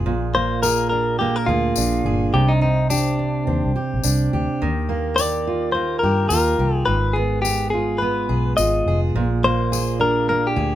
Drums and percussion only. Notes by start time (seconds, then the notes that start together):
0.63 tambourine
1.76 tambourine
2.90 tambourine
4.04 tambourine
5.18 tambourine
6.30 tambourine
7.45 tambourine
8.58 tambourine
9.73 tambourine